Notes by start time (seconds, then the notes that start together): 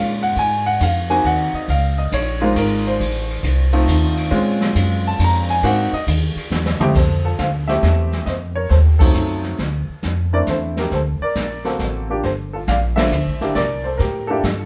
Already playing: A#2 G#3 A#3 C#4 F4 F5
0.22 F#5, ride
0.36 G#2 G#5, kick, ride
0.66 F#5, ride
0.80 F2 F5, kick, hi-hat pedal, ride
1.10 A#3 C4 D#4 F#4 G#5, ride
1.24 D#2 F#5, kick, ride
1.53 D#5, muted upright bass stroke
1.68 C#2 F5, kick, ride
1.98 D#5
2.12 A#1 C#5, kick, hi-hat pedal, ride
2.41 G#3 A#3 D#4 F4 C5
2.55 G#1 A#4, kick, hi-hat pedal, ride
2.86 C5, ride
2.99 A1, kick, ride
3.30 ride
3.43 C2, kick, hi-hat pedal, ride
3.73 A3 C4 D#4 F4, ride
3.87 D#2, kick, hi-hat pedal, ride
4.17 ride
4.31 A#2 G#3 C4 C#4 F4, kick, ride
4.61 snare
4.75 F#2, kick, hi-hat pedal, ride
5.07 A5
5.19 F2, kick, hi-hat pedal, ride
5.24 A#5
5.48 G#5, ride
5.63 G#2 A#3 C4 D#4 F#4 F#5, kick, ride
5.92 D#5, muted upright bass stroke
6.07 D#2, kick, hi-hat pedal, ride
6.36 muted upright bass stroke, ride
6.50 E2, snare, hi-hat pedal
6.66 snare
6.80 F2 A3 C4 E4 G4, muted upright bass stroke, mid tom
6.94 F2 A4 C5, brush sweep, kick, snare, crash
7.25 F4 A4
7.38 D2 C5 F5, kick, snare, hi-hat pedal
7.68 A3 C4 E4 G4 C5 E5, snare
7.83 E2, kick, snare, hi-hat pedal
8.12 snare
8.25 F2 C5 D#5, brush sweep, kick, snare
8.56 A#4 C#5
8.69 D#2 A4 C5, kick, snare
8.99 F#3 A3 C4 D#4 F4 A4, kick, crash
9.14 F#2, hi-hat pedal
9.44 snare
9.59 D2, brush sweep, kick, snare
9.88 muted upright bass stroke
10.03 F2, kick, snare, hi-hat pedal
10.33 A3 C4 D4 E4 A#4 D5
10.47 E2 A4 C5, kick, snare, hi-hat pedal
10.77 G4 A#4, snare
10.91 D2 A4 C5, brush sweep, kick, snare
11.20 A#4 D5, muted upright bass stroke
11.35 A#1, kick, snare, hi-hat pedal
11.65 A#3 C4 F#4 A4, snare
11.79 A1, kick, snare
12.10 A#3 D4 F4 G4
12.23 G1 A4 C5, brush sweep, kick, snare
12.53 F4 A4
12.67 A#1 D5 F5, kick, snare, hi-hat pedal
12.96 A#3 D4 F4 A4 C5 E5, snare, ride
13.11 D2, hi-hat pedal
13.26 A#1
13.40 G1 A#3 D4 E4 G4, snare
13.55 C2 A#4 D5, brush sweep, kick, snare
13.84 A4 C5
13.98 A2 G4 A#4, kick, snare
14.27 A#3 D4 E4 F4 G4 A4
14.43 G2, kick, snare, hi-hat pedal